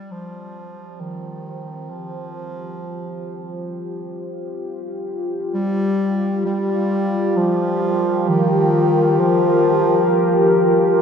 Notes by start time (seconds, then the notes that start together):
Already playing: G3 F4 G4 C5
0.11 F3
1.00 D#3
1.90 F3
5.54 G3
6.46 G3
6.86 A#4
7.37 F3
8.29 D#3
9.20 F3